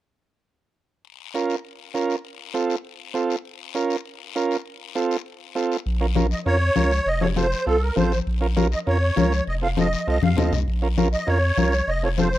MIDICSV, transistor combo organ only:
0, 0, Header, 1, 2, 480
1, 0, Start_track
1, 0, Key_signature, -5, "minor"
1, 0, Tempo, 300903
1, 1672, Time_signature, 4, 2, 24, 8
1, 19757, End_track
2, 0, Start_track
2, 0, Title_t, "Transistor combo organ"
2, 0, Program_c, 0, 18
2, 2142, Note_on_c, 0, 61, 72
2, 2151, Note_on_c, 0, 65, 65
2, 2157, Note_on_c, 0, 70, 72
2, 2483, Note_off_c, 0, 61, 0
2, 2488, Note_off_c, 0, 65, 0
2, 2491, Note_off_c, 0, 70, 0
2, 3096, Note_on_c, 0, 61, 70
2, 3102, Note_on_c, 0, 65, 60
2, 3109, Note_on_c, 0, 70, 77
2, 3440, Note_off_c, 0, 61, 0
2, 3443, Note_off_c, 0, 65, 0
2, 3447, Note_off_c, 0, 70, 0
2, 4051, Note_on_c, 0, 60, 68
2, 4061, Note_on_c, 0, 65, 66
2, 4063, Note_on_c, 0, 69, 80
2, 4398, Note_off_c, 0, 60, 0
2, 4403, Note_off_c, 0, 65, 0
2, 4404, Note_off_c, 0, 69, 0
2, 5007, Note_on_c, 0, 60, 70
2, 5020, Note_on_c, 0, 65, 61
2, 5023, Note_on_c, 0, 69, 76
2, 5356, Note_off_c, 0, 60, 0
2, 5363, Note_off_c, 0, 65, 0
2, 5364, Note_off_c, 0, 69, 0
2, 5976, Note_on_c, 0, 61, 72
2, 5987, Note_on_c, 0, 65, 66
2, 5991, Note_on_c, 0, 70, 75
2, 6320, Note_off_c, 0, 61, 0
2, 6326, Note_off_c, 0, 65, 0
2, 6328, Note_off_c, 0, 70, 0
2, 6947, Note_on_c, 0, 61, 65
2, 6948, Note_on_c, 0, 65, 64
2, 6957, Note_on_c, 0, 70, 80
2, 7286, Note_off_c, 0, 61, 0
2, 7286, Note_off_c, 0, 65, 0
2, 7291, Note_off_c, 0, 70, 0
2, 7901, Note_on_c, 0, 60, 69
2, 7905, Note_on_c, 0, 65, 61
2, 7913, Note_on_c, 0, 69, 83
2, 8243, Note_off_c, 0, 60, 0
2, 8245, Note_off_c, 0, 65, 0
2, 8249, Note_off_c, 0, 69, 0
2, 8858, Note_on_c, 0, 60, 70
2, 8861, Note_on_c, 0, 65, 70
2, 8870, Note_on_c, 0, 69, 74
2, 9201, Note_off_c, 0, 60, 0
2, 9203, Note_off_c, 0, 65, 0
2, 9208, Note_off_c, 0, 69, 0
2, 9583, Note_on_c, 0, 61, 55
2, 9588, Note_on_c, 0, 65, 53
2, 9591, Note_on_c, 0, 70, 67
2, 9672, Note_off_c, 0, 61, 0
2, 9674, Note_off_c, 0, 65, 0
2, 9676, Note_off_c, 0, 70, 0
2, 9816, Note_on_c, 0, 61, 75
2, 9825, Note_on_c, 0, 65, 65
2, 9833, Note_on_c, 0, 70, 76
2, 9992, Note_off_c, 0, 61, 0
2, 9997, Note_off_c, 0, 65, 0
2, 10001, Note_off_c, 0, 70, 0
2, 10301, Note_on_c, 0, 61, 56
2, 10310, Note_on_c, 0, 65, 53
2, 10313, Note_on_c, 0, 70, 66
2, 10475, Note_off_c, 0, 61, 0
2, 10479, Note_off_c, 0, 65, 0
2, 10481, Note_off_c, 0, 70, 0
2, 10777, Note_on_c, 0, 61, 60
2, 10783, Note_on_c, 0, 65, 58
2, 10791, Note_on_c, 0, 70, 67
2, 11037, Note_off_c, 0, 61, 0
2, 11040, Note_off_c, 0, 65, 0
2, 11044, Note_off_c, 0, 70, 0
2, 11504, Note_on_c, 0, 60, 49
2, 11504, Note_on_c, 0, 65, 46
2, 11513, Note_on_c, 0, 69, 53
2, 11592, Note_off_c, 0, 60, 0
2, 11592, Note_off_c, 0, 65, 0
2, 11596, Note_off_c, 0, 69, 0
2, 11736, Note_on_c, 0, 60, 65
2, 11745, Note_on_c, 0, 65, 56
2, 11751, Note_on_c, 0, 69, 68
2, 11912, Note_off_c, 0, 60, 0
2, 11917, Note_off_c, 0, 65, 0
2, 11919, Note_off_c, 0, 69, 0
2, 12223, Note_on_c, 0, 60, 57
2, 12231, Note_on_c, 0, 65, 52
2, 12238, Note_on_c, 0, 69, 64
2, 12395, Note_off_c, 0, 60, 0
2, 12399, Note_off_c, 0, 65, 0
2, 12403, Note_off_c, 0, 69, 0
2, 12697, Note_on_c, 0, 60, 70
2, 12702, Note_on_c, 0, 65, 62
2, 12715, Note_on_c, 0, 69, 64
2, 12957, Note_off_c, 0, 60, 0
2, 12959, Note_off_c, 0, 65, 0
2, 12965, Note_off_c, 0, 69, 0
2, 13412, Note_on_c, 0, 61, 59
2, 13423, Note_on_c, 0, 65, 59
2, 13429, Note_on_c, 0, 70, 71
2, 13506, Note_off_c, 0, 61, 0
2, 13511, Note_off_c, 0, 65, 0
2, 13514, Note_off_c, 0, 70, 0
2, 13658, Note_on_c, 0, 61, 77
2, 13666, Note_on_c, 0, 65, 69
2, 13668, Note_on_c, 0, 70, 82
2, 13833, Note_off_c, 0, 61, 0
2, 13837, Note_off_c, 0, 65, 0
2, 13838, Note_off_c, 0, 70, 0
2, 14141, Note_on_c, 0, 61, 59
2, 14149, Note_on_c, 0, 65, 52
2, 14152, Note_on_c, 0, 70, 63
2, 14315, Note_off_c, 0, 61, 0
2, 14319, Note_off_c, 0, 65, 0
2, 14320, Note_off_c, 0, 70, 0
2, 14615, Note_on_c, 0, 61, 60
2, 14620, Note_on_c, 0, 65, 54
2, 14634, Note_on_c, 0, 70, 70
2, 14876, Note_off_c, 0, 61, 0
2, 14878, Note_off_c, 0, 65, 0
2, 14885, Note_off_c, 0, 70, 0
2, 15343, Note_on_c, 0, 60, 49
2, 15350, Note_on_c, 0, 65, 44
2, 15358, Note_on_c, 0, 69, 54
2, 15432, Note_off_c, 0, 60, 0
2, 15436, Note_off_c, 0, 65, 0
2, 15439, Note_off_c, 0, 69, 0
2, 15579, Note_on_c, 0, 60, 64
2, 15588, Note_on_c, 0, 65, 64
2, 15590, Note_on_c, 0, 69, 66
2, 15754, Note_off_c, 0, 60, 0
2, 15758, Note_off_c, 0, 65, 0
2, 15759, Note_off_c, 0, 69, 0
2, 16067, Note_on_c, 0, 60, 58
2, 16074, Note_on_c, 0, 65, 54
2, 16080, Note_on_c, 0, 69, 58
2, 16238, Note_off_c, 0, 60, 0
2, 16242, Note_off_c, 0, 65, 0
2, 16245, Note_off_c, 0, 69, 0
2, 16533, Note_on_c, 0, 60, 66
2, 16540, Note_on_c, 0, 65, 60
2, 16548, Note_on_c, 0, 69, 64
2, 16796, Note_off_c, 0, 60, 0
2, 16799, Note_off_c, 0, 65, 0
2, 16803, Note_off_c, 0, 69, 0
2, 17260, Note_on_c, 0, 61, 63
2, 17266, Note_on_c, 0, 65, 54
2, 17277, Note_on_c, 0, 70, 68
2, 17351, Note_off_c, 0, 61, 0
2, 17354, Note_off_c, 0, 65, 0
2, 17360, Note_off_c, 0, 70, 0
2, 17507, Note_on_c, 0, 61, 78
2, 17513, Note_on_c, 0, 65, 69
2, 17522, Note_on_c, 0, 70, 84
2, 17679, Note_off_c, 0, 61, 0
2, 17682, Note_off_c, 0, 65, 0
2, 17686, Note_off_c, 0, 70, 0
2, 17974, Note_on_c, 0, 61, 54
2, 17980, Note_on_c, 0, 65, 55
2, 17989, Note_on_c, 0, 70, 63
2, 18153, Note_off_c, 0, 61, 0
2, 18155, Note_off_c, 0, 65, 0
2, 18160, Note_off_c, 0, 70, 0
2, 18463, Note_on_c, 0, 61, 68
2, 18465, Note_on_c, 0, 65, 63
2, 18478, Note_on_c, 0, 70, 71
2, 18722, Note_off_c, 0, 61, 0
2, 18723, Note_off_c, 0, 65, 0
2, 18729, Note_off_c, 0, 70, 0
2, 19192, Note_on_c, 0, 60, 57
2, 19200, Note_on_c, 0, 65, 46
2, 19203, Note_on_c, 0, 69, 62
2, 19278, Note_off_c, 0, 60, 0
2, 19282, Note_off_c, 0, 65, 0
2, 19284, Note_off_c, 0, 69, 0
2, 19430, Note_on_c, 0, 60, 62
2, 19438, Note_on_c, 0, 65, 63
2, 19448, Note_on_c, 0, 69, 68
2, 19602, Note_off_c, 0, 60, 0
2, 19605, Note_off_c, 0, 65, 0
2, 19610, Note_off_c, 0, 69, 0
2, 19757, End_track
0, 0, End_of_file